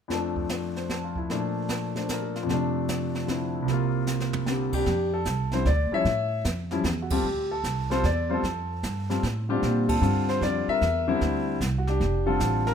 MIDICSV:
0, 0, Header, 1, 5, 480
1, 0, Start_track
1, 0, Key_signature, -1, "major"
1, 0, Tempo, 396825
1, 128, Time_signature, 3, 2, 24, 8
1, 15410, End_track
2, 0, Start_track
2, 0, Title_t, "Grand piano"
2, 0, Program_c, 0, 0
2, 98, Note_on_c, 0, 41, 52
2, 119, Note_on_c, 0, 53, 45
2, 141, Note_on_c, 0, 57, 47
2, 162, Note_on_c, 0, 62, 51
2, 929, Note_on_c, 0, 72, 41
2, 1098, Note_on_c, 0, 69, 41
2, 1176, Note_off_c, 0, 72, 0
2, 1260, Note_on_c, 0, 65, 42
2, 1388, Note_off_c, 0, 69, 0
2, 1420, Note_on_c, 0, 64, 44
2, 1502, Note_off_c, 0, 65, 0
2, 1554, Note_off_c, 0, 41, 0
2, 1565, Note_off_c, 0, 53, 0
2, 1568, Note_off_c, 0, 57, 0
2, 1575, Note_off_c, 0, 62, 0
2, 1577, Note_on_c, 0, 46, 54
2, 1584, Note_on_c, 0, 53, 48
2, 1587, Note_on_c, 0, 57, 51
2, 1593, Note_on_c, 0, 62, 57
2, 1662, Note_off_c, 0, 64, 0
2, 2342, Note_off_c, 0, 57, 0
2, 2360, Note_on_c, 0, 57, 36
2, 2377, Note_off_c, 0, 62, 0
2, 2380, Note_on_c, 0, 72, 39
2, 2395, Note_on_c, 0, 62, 42
2, 2532, Note_on_c, 0, 70, 47
2, 2622, Note_off_c, 0, 72, 0
2, 2684, Note_on_c, 0, 69, 45
2, 2825, Note_off_c, 0, 70, 0
2, 2849, Note_on_c, 0, 65, 45
2, 2933, Note_off_c, 0, 69, 0
2, 2937, Note_on_c, 0, 41, 58
2, 2981, Note_on_c, 0, 48, 51
2, 3007, Note_off_c, 0, 57, 0
2, 3013, Note_off_c, 0, 46, 0
2, 3017, Note_off_c, 0, 53, 0
2, 3025, Note_off_c, 0, 62, 0
2, 3026, Note_on_c, 0, 57, 52
2, 3069, Note_on_c, 0, 62, 67
2, 3096, Note_off_c, 0, 65, 0
2, 3949, Note_on_c, 0, 50, 40
2, 3963, Note_on_c, 0, 60, 35
2, 3980, Note_on_c, 0, 64, 45
2, 4381, Note_on_c, 0, 36, 58
2, 4406, Note_off_c, 0, 48, 0
2, 4413, Note_off_c, 0, 41, 0
2, 4424, Note_on_c, 0, 48, 52
2, 4439, Note_off_c, 0, 50, 0
2, 4446, Note_off_c, 0, 60, 0
2, 4455, Note_off_c, 0, 64, 0
2, 4458, Note_off_c, 0, 57, 0
2, 4469, Note_on_c, 0, 58, 53
2, 4480, Note_off_c, 0, 62, 0
2, 4512, Note_on_c, 0, 65, 61
2, 5407, Note_on_c, 0, 50, 40
2, 5421, Note_on_c, 0, 60, 38
2, 5440, Note_on_c, 0, 67, 47
2, 5717, Note_off_c, 0, 67, 0
2, 5735, Note_on_c, 0, 67, 87
2, 5749, Note_on_c, 0, 62, 51
2, 5855, Note_off_c, 0, 36, 0
2, 5877, Note_off_c, 0, 48, 0
2, 5888, Note_off_c, 0, 50, 0
2, 5895, Note_off_c, 0, 60, 0
2, 5899, Note_off_c, 0, 58, 0
2, 5921, Note_off_c, 0, 65, 0
2, 6213, Note_on_c, 0, 69, 67
2, 6224, Note_off_c, 0, 67, 0
2, 6337, Note_off_c, 0, 62, 0
2, 6689, Note_on_c, 0, 50, 45
2, 6693, Note_on_c, 0, 55, 47
2, 6694, Note_on_c, 0, 72, 75
2, 6698, Note_on_c, 0, 60, 40
2, 6699, Note_on_c, 0, 64, 52
2, 6703, Note_off_c, 0, 69, 0
2, 6835, Note_off_c, 0, 50, 0
2, 6837, Note_off_c, 0, 55, 0
2, 6839, Note_off_c, 0, 60, 0
2, 6840, Note_off_c, 0, 64, 0
2, 6843, Note_off_c, 0, 72, 0
2, 6855, Note_on_c, 0, 74, 82
2, 7145, Note_off_c, 0, 74, 0
2, 7162, Note_on_c, 0, 53, 53
2, 7167, Note_on_c, 0, 55, 51
2, 7169, Note_on_c, 0, 61, 48
2, 7172, Note_on_c, 0, 64, 60
2, 7185, Note_on_c, 0, 76, 97
2, 7199, Note_on_c, 0, 73, 63
2, 7311, Note_off_c, 0, 53, 0
2, 7314, Note_off_c, 0, 55, 0
2, 7314, Note_off_c, 0, 61, 0
2, 7316, Note_off_c, 0, 64, 0
2, 7775, Note_off_c, 0, 76, 0
2, 7782, Note_off_c, 0, 73, 0
2, 8122, Note_on_c, 0, 53, 63
2, 8128, Note_on_c, 0, 55, 53
2, 8129, Note_on_c, 0, 61, 53
2, 8138, Note_on_c, 0, 64, 67
2, 8271, Note_off_c, 0, 53, 0
2, 8274, Note_off_c, 0, 55, 0
2, 8274, Note_off_c, 0, 61, 0
2, 8279, Note_off_c, 0, 64, 0
2, 8493, Note_on_c, 0, 66, 53
2, 8602, Note_on_c, 0, 55, 59
2, 8604, Note_off_c, 0, 66, 0
2, 8606, Note_on_c, 0, 67, 84
2, 8607, Note_on_c, 0, 60, 54
2, 8611, Note_on_c, 0, 65, 49
2, 8618, Note_on_c, 0, 69, 59
2, 8751, Note_off_c, 0, 55, 0
2, 8753, Note_off_c, 0, 60, 0
2, 8755, Note_off_c, 0, 65, 0
2, 8759, Note_off_c, 0, 69, 0
2, 9090, Note_on_c, 0, 69, 68
2, 9099, Note_off_c, 0, 67, 0
2, 9556, Note_off_c, 0, 69, 0
2, 9557, Note_on_c, 0, 55, 62
2, 9571, Note_on_c, 0, 60, 55
2, 9573, Note_on_c, 0, 65, 56
2, 9574, Note_on_c, 0, 69, 68
2, 9575, Note_on_c, 0, 72, 82
2, 9708, Note_off_c, 0, 55, 0
2, 9715, Note_off_c, 0, 60, 0
2, 9716, Note_off_c, 0, 65, 0
2, 9716, Note_off_c, 0, 69, 0
2, 9738, Note_off_c, 0, 72, 0
2, 9741, Note_on_c, 0, 74, 78
2, 10031, Note_on_c, 0, 55, 59
2, 10037, Note_on_c, 0, 60, 58
2, 10045, Note_on_c, 0, 65, 58
2, 10047, Note_on_c, 0, 72, 66
2, 10059, Note_off_c, 0, 74, 0
2, 10086, Note_on_c, 0, 69, 61
2, 10185, Note_off_c, 0, 55, 0
2, 10188, Note_off_c, 0, 60, 0
2, 10192, Note_off_c, 0, 65, 0
2, 10193, Note_off_c, 0, 72, 0
2, 10999, Note_off_c, 0, 69, 0
2, 11003, Note_on_c, 0, 55, 51
2, 11010, Note_on_c, 0, 60, 48
2, 11011, Note_on_c, 0, 65, 49
2, 11018, Note_on_c, 0, 69, 56
2, 11150, Note_off_c, 0, 55, 0
2, 11154, Note_off_c, 0, 60, 0
2, 11155, Note_off_c, 0, 65, 0
2, 11158, Note_off_c, 0, 69, 0
2, 11478, Note_on_c, 0, 50, 58
2, 11486, Note_on_c, 0, 55, 57
2, 11490, Note_on_c, 0, 67, 84
2, 11491, Note_on_c, 0, 60, 57
2, 11499, Note_on_c, 0, 65, 61
2, 11515, Note_on_c, 0, 62, 56
2, 11962, Note_on_c, 0, 69, 75
2, 11980, Note_off_c, 0, 67, 0
2, 12092, Note_off_c, 0, 50, 0
2, 12096, Note_off_c, 0, 55, 0
2, 12098, Note_off_c, 0, 60, 0
2, 12099, Note_off_c, 0, 62, 0
2, 12102, Note_off_c, 0, 65, 0
2, 12113, Note_on_c, 0, 50, 57
2, 12122, Note_on_c, 0, 55, 54
2, 12123, Note_on_c, 0, 60, 52
2, 12126, Note_on_c, 0, 65, 59
2, 12408, Note_off_c, 0, 69, 0
2, 12448, Note_on_c, 0, 72, 82
2, 12575, Note_off_c, 0, 50, 0
2, 12578, Note_off_c, 0, 55, 0
2, 12582, Note_off_c, 0, 60, 0
2, 12586, Note_off_c, 0, 65, 0
2, 12594, Note_on_c, 0, 50, 49
2, 12596, Note_on_c, 0, 55, 48
2, 12598, Note_off_c, 0, 72, 0
2, 12600, Note_on_c, 0, 60, 46
2, 12604, Note_on_c, 0, 65, 54
2, 12616, Note_on_c, 0, 74, 84
2, 12905, Note_off_c, 0, 74, 0
2, 12932, Note_on_c, 0, 76, 97
2, 12944, Note_on_c, 0, 70, 57
2, 13080, Note_off_c, 0, 50, 0
2, 13081, Note_off_c, 0, 55, 0
2, 13083, Note_off_c, 0, 60, 0
2, 13085, Note_off_c, 0, 65, 0
2, 13396, Note_on_c, 0, 50, 68
2, 13400, Note_on_c, 0, 55, 67
2, 13402, Note_on_c, 0, 60, 66
2, 13412, Note_on_c, 0, 64, 80
2, 13526, Note_off_c, 0, 76, 0
2, 13533, Note_off_c, 0, 70, 0
2, 14010, Note_off_c, 0, 50, 0
2, 14012, Note_off_c, 0, 55, 0
2, 14013, Note_off_c, 0, 60, 0
2, 14018, Note_off_c, 0, 64, 0
2, 14252, Note_on_c, 0, 66, 56
2, 14363, Note_off_c, 0, 66, 0
2, 14363, Note_on_c, 0, 67, 82
2, 14386, Note_on_c, 0, 62, 55
2, 14832, Note_on_c, 0, 50, 64
2, 14836, Note_on_c, 0, 55, 51
2, 14839, Note_on_c, 0, 69, 80
2, 14842, Note_on_c, 0, 60, 48
2, 14846, Note_on_c, 0, 65, 62
2, 14856, Note_off_c, 0, 67, 0
2, 14973, Note_off_c, 0, 62, 0
2, 15325, Note_on_c, 0, 70, 87
2, 15334, Note_off_c, 0, 69, 0
2, 15410, Note_off_c, 0, 50, 0
2, 15410, Note_off_c, 0, 55, 0
2, 15410, Note_off_c, 0, 60, 0
2, 15410, Note_off_c, 0, 65, 0
2, 15410, Note_off_c, 0, 70, 0
2, 15410, End_track
3, 0, Start_track
3, 0, Title_t, "Upright bass"
3, 0, Program_c, 1, 32
3, 5882, Note_on_c, 1, 41, 84
3, 6351, Note_off_c, 1, 41, 0
3, 6357, Note_on_c, 1, 36, 77
3, 6828, Note_off_c, 1, 36, 0
3, 6839, Note_on_c, 1, 38, 90
3, 7137, Note_off_c, 1, 38, 0
3, 7315, Note_on_c, 1, 45, 79
3, 7787, Note_off_c, 1, 45, 0
3, 7797, Note_on_c, 1, 41, 77
3, 8264, Note_off_c, 1, 41, 0
3, 8271, Note_on_c, 1, 40, 89
3, 8745, Note_off_c, 1, 40, 0
3, 8754, Note_on_c, 1, 38, 77
3, 9226, Note_off_c, 1, 38, 0
3, 9237, Note_on_c, 1, 36, 73
3, 9707, Note_off_c, 1, 36, 0
3, 9718, Note_on_c, 1, 40, 84
3, 10188, Note_off_c, 1, 40, 0
3, 10198, Note_on_c, 1, 41, 80
3, 10668, Note_off_c, 1, 41, 0
3, 10684, Note_on_c, 1, 43, 75
3, 11151, Note_off_c, 1, 43, 0
3, 11164, Note_on_c, 1, 45, 78
3, 11631, Note_off_c, 1, 45, 0
3, 11641, Note_on_c, 1, 46, 75
3, 12106, Note_off_c, 1, 46, 0
3, 12113, Note_on_c, 1, 43, 78
3, 12585, Note_off_c, 1, 43, 0
3, 12595, Note_on_c, 1, 41, 84
3, 12894, Note_off_c, 1, 41, 0
3, 13078, Note_on_c, 1, 40, 81
3, 13547, Note_off_c, 1, 40, 0
3, 13559, Note_on_c, 1, 38, 80
3, 14028, Note_off_c, 1, 38, 0
3, 14039, Note_on_c, 1, 36, 87
3, 14508, Note_off_c, 1, 36, 0
3, 14521, Note_on_c, 1, 29, 88
3, 14989, Note_off_c, 1, 29, 0
3, 15001, Note_on_c, 1, 33, 86
3, 15410, Note_off_c, 1, 33, 0
3, 15410, End_track
4, 0, Start_track
4, 0, Title_t, "Muted upright bass strokes"
4, 7155, Note_on_c, 9, 29, 33
4, 7276, Note_off_c, 9, 29, 0
4, 12915, Note_on_c, 9, 29, 38
4, 13036, Note_off_c, 9, 29, 0
4, 15410, End_track
5, 0, Start_track
5, 0, Title_t, "Drums"
5, 122, Note_on_c, 9, 25, 39
5, 122, Note_on_c, 9, 36, 19
5, 122, Note_on_c, 9, 38, 34
5, 243, Note_off_c, 9, 36, 0
5, 243, Note_off_c, 9, 38, 0
5, 437, Note_on_c, 9, 36, 43
5, 558, Note_off_c, 9, 36, 0
5, 596, Note_on_c, 9, 44, 49
5, 599, Note_on_c, 9, 38, 52
5, 717, Note_off_c, 9, 44, 0
5, 720, Note_off_c, 9, 38, 0
5, 923, Note_on_c, 9, 38, 30
5, 1044, Note_off_c, 9, 38, 0
5, 1082, Note_on_c, 9, 36, 21
5, 1082, Note_on_c, 9, 38, 39
5, 1203, Note_off_c, 9, 36, 0
5, 1203, Note_off_c, 9, 38, 0
5, 1398, Note_on_c, 9, 36, 43
5, 1519, Note_off_c, 9, 36, 0
5, 1570, Note_off_c, 9, 25, 0
5, 1570, Note_on_c, 9, 25, 36
5, 1570, Note_on_c, 9, 38, 36
5, 1691, Note_off_c, 9, 38, 0
5, 2041, Note_on_c, 9, 44, 49
5, 2045, Note_on_c, 9, 36, 20
5, 2045, Note_on_c, 9, 38, 55
5, 2162, Note_off_c, 9, 44, 0
5, 2166, Note_off_c, 9, 36, 0
5, 2166, Note_off_c, 9, 38, 0
5, 2367, Note_on_c, 9, 38, 34
5, 2488, Note_off_c, 9, 38, 0
5, 2526, Note_on_c, 9, 44, 53
5, 2528, Note_on_c, 9, 36, 19
5, 2529, Note_on_c, 9, 38, 51
5, 2646, Note_off_c, 9, 44, 0
5, 2649, Note_off_c, 9, 36, 0
5, 2650, Note_off_c, 9, 38, 0
5, 2851, Note_on_c, 9, 38, 32
5, 2972, Note_off_c, 9, 38, 0
5, 3011, Note_on_c, 9, 36, 18
5, 3013, Note_off_c, 9, 25, 0
5, 3013, Note_on_c, 9, 25, 47
5, 3013, Note_on_c, 9, 38, 35
5, 3132, Note_off_c, 9, 36, 0
5, 3134, Note_off_c, 9, 38, 0
5, 3490, Note_on_c, 9, 44, 52
5, 3491, Note_on_c, 9, 36, 26
5, 3493, Note_on_c, 9, 38, 55
5, 3611, Note_off_c, 9, 44, 0
5, 3612, Note_off_c, 9, 36, 0
5, 3614, Note_off_c, 9, 38, 0
5, 3809, Note_on_c, 9, 38, 31
5, 3930, Note_off_c, 9, 38, 0
5, 3971, Note_on_c, 9, 38, 39
5, 3972, Note_on_c, 9, 36, 20
5, 4092, Note_off_c, 9, 38, 0
5, 4093, Note_off_c, 9, 36, 0
5, 4449, Note_on_c, 9, 36, 26
5, 4452, Note_off_c, 9, 25, 0
5, 4452, Note_on_c, 9, 25, 40
5, 4452, Note_on_c, 9, 38, 35
5, 4570, Note_off_c, 9, 36, 0
5, 4573, Note_off_c, 9, 38, 0
5, 4922, Note_on_c, 9, 44, 57
5, 4926, Note_on_c, 9, 38, 44
5, 5043, Note_off_c, 9, 44, 0
5, 5047, Note_off_c, 9, 38, 0
5, 5085, Note_on_c, 9, 38, 43
5, 5206, Note_off_c, 9, 38, 0
5, 5241, Note_on_c, 9, 43, 62
5, 5362, Note_off_c, 9, 43, 0
5, 5400, Note_on_c, 9, 38, 46
5, 5521, Note_off_c, 9, 38, 0
5, 5716, Note_on_c, 9, 49, 59
5, 5720, Note_on_c, 9, 36, 64
5, 5837, Note_off_c, 9, 49, 0
5, 5841, Note_off_c, 9, 36, 0
5, 5877, Note_off_c, 9, 25, 0
5, 5877, Note_on_c, 9, 25, 43
5, 5877, Note_on_c, 9, 38, 37
5, 5883, Note_on_c, 9, 36, 17
5, 5998, Note_off_c, 9, 38, 0
5, 6004, Note_off_c, 9, 36, 0
5, 6355, Note_on_c, 9, 44, 57
5, 6359, Note_on_c, 9, 38, 50
5, 6362, Note_on_c, 9, 36, 19
5, 6476, Note_off_c, 9, 44, 0
5, 6480, Note_off_c, 9, 38, 0
5, 6483, Note_off_c, 9, 36, 0
5, 6673, Note_on_c, 9, 38, 32
5, 6794, Note_off_c, 9, 38, 0
5, 6841, Note_on_c, 9, 36, 22
5, 6843, Note_on_c, 9, 38, 37
5, 6962, Note_off_c, 9, 36, 0
5, 6964, Note_off_c, 9, 38, 0
5, 7321, Note_off_c, 9, 25, 0
5, 7321, Note_on_c, 9, 25, 38
5, 7321, Note_on_c, 9, 36, 22
5, 7321, Note_on_c, 9, 38, 39
5, 7442, Note_off_c, 9, 36, 0
5, 7442, Note_off_c, 9, 38, 0
5, 7798, Note_on_c, 9, 44, 54
5, 7799, Note_on_c, 9, 36, 18
5, 7801, Note_on_c, 9, 38, 54
5, 7919, Note_off_c, 9, 44, 0
5, 7920, Note_off_c, 9, 36, 0
5, 7922, Note_off_c, 9, 38, 0
5, 8115, Note_on_c, 9, 38, 35
5, 8236, Note_off_c, 9, 38, 0
5, 8276, Note_on_c, 9, 44, 45
5, 8279, Note_on_c, 9, 38, 53
5, 8280, Note_on_c, 9, 36, 24
5, 8397, Note_off_c, 9, 44, 0
5, 8400, Note_off_c, 9, 38, 0
5, 8401, Note_off_c, 9, 36, 0
5, 8591, Note_on_c, 9, 51, 72
5, 8597, Note_on_c, 9, 36, 80
5, 8712, Note_off_c, 9, 51, 0
5, 8717, Note_off_c, 9, 36, 0
5, 8761, Note_off_c, 9, 25, 0
5, 8761, Note_on_c, 9, 25, 43
5, 9241, Note_on_c, 9, 44, 51
5, 9244, Note_on_c, 9, 36, 23
5, 9244, Note_on_c, 9, 38, 56
5, 9362, Note_off_c, 9, 44, 0
5, 9365, Note_off_c, 9, 36, 0
5, 9365, Note_off_c, 9, 38, 0
5, 9566, Note_on_c, 9, 38, 35
5, 9687, Note_off_c, 9, 38, 0
5, 9723, Note_on_c, 9, 38, 40
5, 9844, Note_off_c, 9, 38, 0
5, 10205, Note_off_c, 9, 25, 0
5, 10205, Note_on_c, 9, 25, 47
5, 10205, Note_on_c, 9, 36, 18
5, 10205, Note_on_c, 9, 38, 39
5, 10326, Note_off_c, 9, 36, 0
5, 10326, Note_off_c, 9, 38, 0
5, 10683, Note_on_c, 9, 44, 53
5, 10685, Note_on_c, 9, 36, 21
5, 10686, Note_on_c, 9, 38, 53
5, 10804, Note_off_c, 9, 44, 0
5, 10806, Note_off_c, 9, 36, 0
5, 10807, Note_off_c, 9, 38, 0
5, 11006, Note_on_c, 9, 38, 33
5, 11127, Note_off_c, 9, 38, 0
5, 11166, Note_on_c, 9, 36, 21
5, 11167, Note_on_c, 9, 38, 40
5, 11287, Note_off_c, 9, 36, 0
5, 11288, Note_off_c, 9, 38, 0
5, 11645, Note_off_c, 9, 25, 0
5, 11645, Note_on_c, 9, 25, 51
5, 11645, Note_on_c, 9, 36, 20
5, 11645, Note_on_c, 9, 38, 36
5, 11766, Note_off_c, 9, 36, 0
5, 11766, Note_off_c, 9, 38, 0
5, 11961, Note_on_c, 9, 36, 69
5, 11962, Note_on_c, 9, 51, 62
5, 12082, Note_off_c, 9, 36, 0
5, 12083, Note_off_c, 9, 51, 0
5, 12132, Note_on_c, 9, 44, 51
5, 12253, Note_off_c, 9, 44, 0
5, 12443, Note_on_c, 9, 38, 35
5, 12564, Note_off_c, 9, 38, 0
5, 12604, Note_on_c, 9, 36, 22
5, 12607, Note_on_c, 9, 38, 40
5, 12725, Note_off_c, 9, 36, 0
5, 12728, Note_off_c, 9, 38, 0
5, 13082, Note_off_c, 9, 25, 0
5, 13082, Note_on_c, 9, 25, 34
5, 13082, Note_on_c, 9, 38, 34
5, 13083, Note_on_c, 9, 36, 22
5, 13203, Note_off_c, 9, 38, 0
5, 13204, Note_off_c, 9, 36, 0
5, 13563, Note_on_c, 9, 36, 19
5, 13563, Note_on_c, 9, 38, 39
5, 13684, Note_off_c, 9, 36, 0
5, 13684, Note_off_c, 9, 38, 0
5, 14043, Note_on_c, 9, 44, 58
5, 14044, Note_on_c, 9, 36, 17
5, 14046, Note_on_c, 9, 38, 53
5, 14164, Note_off_c, 9, 44, 0
5, 14165, Note_off_c, 9, 36, 0
5, 14167, Note_off_c, 9, 38, 0
5, 14363, Note_on_c, 9, 38, 36
5, 14484, Note_off_c, 9, 38, 0
5, 14524, Note_off_c, 9, 25, 0
5, 14524, Note_on_c, 9, 25, 36
5, 14524, Note_on_c, 9, 38, 34
5, 14525, Note_on_c, 9, 36, 24
5, 14645, Note_off_c, 9, 38, 0
5, 14646, Note_off_c, 9, 36, 0
5, 15000, Note_on_c, 9, 44, 55
5, 15004, Note_on_c, 9, 38, 57
5, 15005, Note_on_c, 9, 36, 23
5, 15121, Note_off_c, 9, 44, 0
5, 15125, Note_off_c, 9, 38, 0
5, 15126, Note_off_c, 9, 36, 0
5, 15323, Note_on_c, 9, 38, 38
5, 15410, Note_off_c, 9, 25, 0
5, 15410, Note_off_c, 9, 38, 0
5, 15410, End_track
0, 0, End_of_file